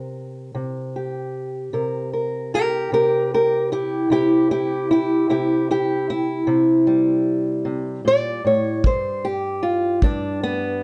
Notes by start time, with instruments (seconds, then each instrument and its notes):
Already playing: steel-string acoustic guitar C3 A#4
0.55 steel-string acoustic guitar C3
0.96 steel-string acoustic guitar G4
1.73 steel-string acoustic guitar C3 A#4
2.13 steel-string acoustic guitar A#4
2.54 steel-string acoustic guitar G4 A#4
2.92 steel-string acoustic guitar C3 G4 A#4
3.34 steel-string acoustic guitar G4 A#4
3.72 steel-string acoustic guitar E4 G4
4.10 steel-string acoustic guitar C3 E4 G4
4.51 steel-string acoustic guitar E4 G4
4.91 steel-string acoustic guitar E4 G4
5.29 steel-string acoustic guitar C3 E4 G4
5.71 steel-string acoustic guitar E4 G4
6.10 steel-string acoustic guitar E4
6.47 steel-string acoustic guitar C3
6.87 steel-string acoustic guitar G3
7.65 steel-string acoustic guitar C3
8.05 steel-string acoustic guitar A#2 D5
8.45 steel-string acoustic guitar A2 C#5
8.84 steel-string acoustic guitar G2 C5, kick
9.25 steel-string acoustic guitar G4
9.63 steel-string acoustic guitar F4
10.02 steel-string acoustic guitar G2 D4, kick
10.43 steel-string acoustic guitar B3